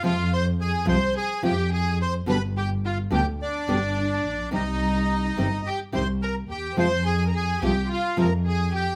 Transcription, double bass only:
\new Staff \with { instrumentName = "Double bass" } { \clef bass \time 4/4 \key f \dorian \tempo 4 = 107 f,4. c,8 r8 f,4. | g,,4. d,8 r8 g,,4 bes,,8 | c,4. g,,8 r8 c,4 ees,8 | f,4. c,8 r8 f,4. | }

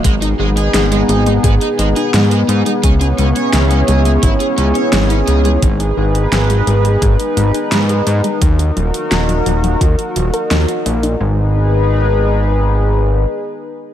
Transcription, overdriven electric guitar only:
\new Staff \with { instrumentName = "Overdriven electric guitar" } { \time 4/4 \key gis \minor \tempo 4 = 86 gis16 dis'16 gis16 gis'16 gis16 gis16 dis'16 dis'16 b16 dis'16 gis16 gis'16 gis'16 gis16 dis'16 dis'16 | cis'16 gis'16 cis'16 cis''16 cis'16 cis'16 gis'16 gis'16 e'16 gis'16 cis'16 cis''16 cis''16 cis'16 gis'16 gis'16 | r1 | r1 |
r1 | }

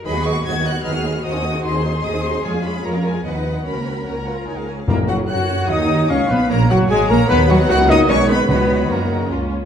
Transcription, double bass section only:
\new Staff \with { instrumentName = "Double bass section" } { \clef bass \time 3/4 \key fis \major \tempo 4 = 150 dis,4 dis,4 dis,4 | dis,4 dis,4 dis,4 | eis,4 eis,4 dis,4 | cis,4 cis,4 cis,4 |
ais,,8 fis,,8 fis,4 dis,4 | cis,8 b,,8 ais,,8 fis,,8 gis,,8 ais,,8 | dis,4 cis,4 b,,4 | cis,4 fis,4 cis,4 | }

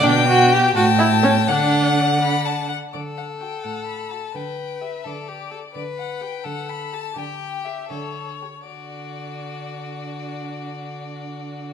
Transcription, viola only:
\new Staff \with { instrumentName = "Viola" } { \time 6/8 \key d \major \tempo 4. = 83 d'8 fis'8 g'8 fis'8 e'8 cis'8 | d'4. r4. | r4 fis'8 r4 fis'8 | r4 g'8 r4 g'8 |
r4 g'8 r4 g'8 | r4 g'8 r4 g'8 | d'2.~ | d'2. | }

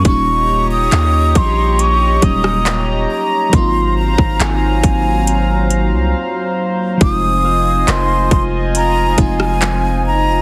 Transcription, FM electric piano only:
\new Staff \with { instrumentName = "FM electric piano" } { \time 4/4 \key ees \dorian \tempo 4 = 69 <g bes des' ees' f'>2~ <g bes des' ees' f'>8 <ges g bes des' ees' f'>4. | <ges bes c' ees' f'>1 | <f aes c' ees' f'>2~ <f aes c' ees' f'>8 <f aes c' ees' f'>4. | }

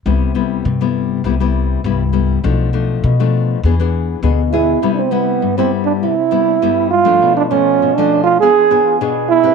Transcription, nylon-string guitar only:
\new Staff \with { instrumentName = "Nylon-string guitar" } { \time 4/4 \key c \major \tempo 4 = 101 << { <g b e'>8 <g b e'>8 r16 <g b e'>8. <g b e'>16 <g b e'>8. <g b e'>16 r16 <g b e'>8 | <f a d'>8 <f a d'>8. <f a d'>8. <b d' gis'>16 <b d' gis'>8. <b d' gis'>16 r16 <b d' gis'>8 | <g b e'>16 r16 <g b e'>8. <g b e'>4 r16 <g b e'>8 <g b e'>8 r16 <f a d'>16~ | <f a d'>8 <f a>8. <f a d'>8. <b d' gis'>8 <b d' gis'>8 <b d' gis'>8 r16 <c' g' b'>16 | } \\ { c4 g,4 c4 g,4 | b,4 b,4 e4 b,4 | c4 g,4 c4 g,4 | b,4 b,4 e4 b,4 | } >> }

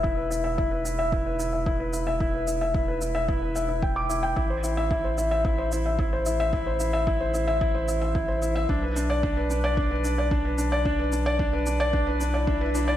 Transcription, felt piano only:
\new Staff \with { instrumentName = "Felt piano" } { \time 4/4 \key a \dorian \tempo 4 = 111 e'16 b'16 e'16 e''16 e'16 b'16 e'16 e''16 e'16 b'16 e'16 e''16 e'16 b'16 e'16 e''16 | e'16 b'16 e'16 e''16 e'16 b'16 e'16 e''16 e'16 b'16 e''16 e'16 g''16 d'''16 e'16 g''16 | e'16 c''16 e'16 e''16 e'16 c''16 e'16 e''16 e'16 c''16 e'16 e''16 e'16 c''16 e'16 e''16 | e'16 c''16 e'16 e''16 e'16 c''16 e'16 e''16 e'16 c''16 e'16 e''16 e'16 c''16 e'16 e''16 |
d'16 b'16 d'16 d''16 d'16 b'16 d'16 d''16 d'16 b'16 d'16 d''16 d'16 b'16 d'16 d''16 | d'16 b'16 d'16 d''16 d'16 b'16 d'16 d''16 d'16 b'16 d'16 d''16 d'16 b'16 d'16 d''16 | }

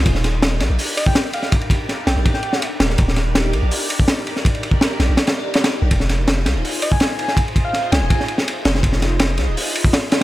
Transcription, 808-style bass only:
\new Staff \with { instrumentName = "808-style bass" } { \clef bass \time 4/4 \key ees \major \tempo 4 = 164 ees,,4. bes,,16 bes,,16 r2 | r4. bes,,16 bes,,16 r4. ees,,8 | ees,,4. bes,,16 bes,,16 r2 | r4. bes,,16 bes,,16 r4. r16 bes,,16 |
f,,4. c,16 ees,,16 r2 | r4. c,16 ees,,16 r4. f,,8 | f,,4. c,16 ees,,16 r2 | }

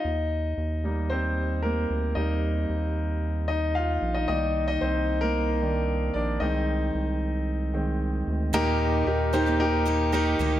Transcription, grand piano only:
<<
  \new Staff \with { instrumentName = "Grand piano" } { \time 4/4 \key c \minor \tempo 4 = 113 <ees' ees''>2 <c' c''>4 <bes bes'>4 | ees''4 r4. <ees' ees''>8 <f' f''>8. <ees' ees''>16 | <ees' ees''>8. <ees' ees''>16 <c' c''>8. <bes bes'>4.~ <bes bes'>16 <d' d''>8 | <ees' ees''>2. r4 |
<ees' g' bes'>4 <ees' g' bes'>8 <ees' g' c''>8 <ees' g' bes'>4 <ees' g' bes'>4 | }
  \new Staff \with { instrumentName = "Grand piano" } { \time 4/4 \key c \minor r4. <g bes ees'>4. r4 | <g bes ees'>8 r2. r8 | <ees bes d''>2~ <ees bes d''>8 <ees bes d'>8 r4 | <ees aes c'>4. r4 <ees aes c'>8 r4 |
bes,4. r2 r8 | }
>>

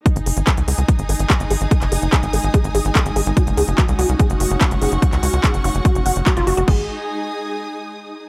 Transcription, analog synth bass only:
\new Staff \with { instrumentName = "Analog synth bass" } { \clef bass \time 4/4 \key fis \dorian \tempo 4 = 145 r16 gis,,16 fis,,16 gis,,16 r16 cis,16 cis,16 cis,16 r16 gis,,16 gis,,16 gis,,16 r16 gis,,16 gis,,16 gis,,16 | r16 fis,,16 fis,,16 fis,,16 r16 gis,,16 gis,,16 gis,,16 r16 gis,,16 gis,,16 gis,,16 r16 gis,,16 gis,,16 gis,,16 | r16 fis,,16 cis,16 fis,,16 r16 bis,,16 bis,,16 bis,,16 r16 fis,,16 fis,,16 fis,,16 r16 fis,,16 fis,,16 fis,,16 | r16 cis,16 cis,16 cis,16 r16 fis,,16 fis,,16 fis,,16 r16 fis,,16 fis,,16 fis,,16 r16 fis,,16 fis,,16 fis,,16 |
gis,,8 r2. r8 | }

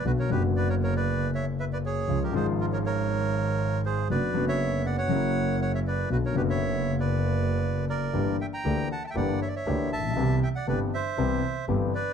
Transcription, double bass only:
\new Staff \with { instrumentName = "Double bass" } { \clef bass \time 4/4 \key b \minor \tempo 4 = 119 b,,8 fis,,2.~ fis,,8 | cis,8 gis,,2.~ gis,,8 | fis,,8 fis,,4. fis,,2 | b,,8 fis,,2.~ fis,,8 |
\key g \lydian g,,8 r8 d,8 r8 g,,8 r8 d,8 bes,,8 | c,8 r8 g,,8 r8 c,8 r8 g,,8 r8 | }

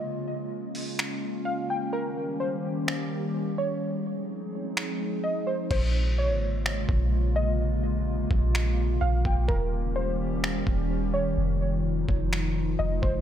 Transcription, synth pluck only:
\new Staff \with { instrumentName = "Synth pluck" } { \time 4/4 \key bes \dorian \tempo 4 = 127 r2. f''8 g''8 | bes'4 c''2~ c''8 des''8 | r2. ees''8 c''8 | c''4 des''2~ des''8 ees''8 |
r2. f''8 g''8 | bes'4 c''2~ c''8 des''8 | r2. ees''8 c''8 | }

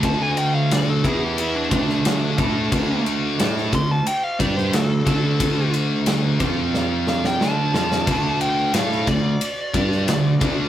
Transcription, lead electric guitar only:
\new Staff \with { instrumentName = "Lead electric guitar" } { \time 4/4 \key d \minor \tempo 4 = 90 a''16 gis''16 g''16 f''16 d''16 a'16 gis'16 g'16 e'16 d'16 d'4.~ | d'8 r4 c'''16 a''16 g''16 f''16 d''16 c''16 a'8 a'8~ | a'8 r2 f''16 g''16 a''4~ | a''8 g''8 f''8 d''2~ d''8 | }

